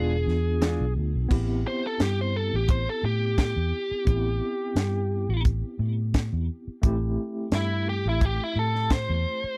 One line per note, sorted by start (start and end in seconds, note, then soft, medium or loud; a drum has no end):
0.00 0.25 E1 medium
0.00 0.15 E3 medium
0.00 0.15 G#3 medium
0.00 1.27 B3 medium
0.00 0.16 D4 medium
0.00 1.27 D4 medium
0.00 0.16 F4 medium
0.00 1.28 F4 medium
0.00 0.93 G#4 medium
0.00 1.28 G#4 medium
0.27 0.77 E2 medium
0.27 snare soft
0.62 0.84 E3 medium
0.62 0.84 G#3 medium
0.62 0.85 D4 medium
0.62 0.85 F4 medium
0.62 snare loud
0.62 closed hi-hat medium
0.80 0.95 B1 medium
0.96 1.14 D2 medium
1.15 1.29 B1 medium
1.29 1.63 A1 medium
1.29 4.02 B3 medium
1.29 4.03 C4 medium
1.29 4.03 E4 medium
1.29 4.04 G4 medium
1.29 kick loud
1.29 crash medium
1.67 1.85 C5 medium
1.87 2.02 A4 medium
2.00 2.50 G2 medium
2.00 2.20 G4 medium
2.00 snare loud
2.00 closed hi-hat medium
2.21 2.35 C5 medium
2.36 2.56 A4 medium
2.54 2.86 A1 medium
2.54 2.70 G4 medium
2.68 2.88 C5 medium
2.68 kick loud
2.68 closed hi-hat medium
2.89 3.04 A4 medium
3.03 3.54 A2 medium
3.03 3.38 G4 medium
3.38 5.42 G4 medium
3.38 kick medium
3.38 snare loud
3.38 closed hi-hat medium
3.56 3.71 E2 medium
3.91 muted fingered electric bass stroke soft
4.05 4.40 A1 medium
4.05 6.78 B3 medium
4.05 6.79 C4 medium
4.05 6.79 E4 medium
4.05 6.80 G4 medium
4.05 kick loud
4.05 closed hi-hat medium
4.75 5.26 G2 medium
4.75 snare loud
4.75 closed hi-hat medium
5.29 5.62 A1 medium
5.45 kick loud
5.45 closed hi-hat medium
5.79 6.30 A2 medium
6.14 kick medium
6.14 snare loud
6.14 closed hi-hat medium
6.33 6.48 E2 medium
6.68 muted fingered electric bass stroke soft
6.82 7.16 A1 medium
6.82 9.55 A3 medium
6.82 9.55 C4 medium
6.82 9.56 E4 medium
6.82 9.57 G4 medium
6.82 kick loud
6.82 closed hi-hat medium
7.52 8.02 G2 medium
7.52 7.87 E4 medium
7.52 snare loud
7.52 closed hi-hat medium
7.89 8.07 G4 medium
8.05 8.38 A1 medium
8.05 8.25 E4 medium
8.21 8.44 G4 medium
8.21 kick loud
8.21 closed hi-hat medium
8.44 8.57 E4 medium
8.56 9.06 A2 medium
8.56 8.91 A4 medium
8.75 snare soft
8.90 9.57 C5 medium
8.90 kick medium
8.90 snare loud
8.90 closed hi-hat medium
9.09 9.24 E2 medium
9.44 muted fingered electric bass stroke soft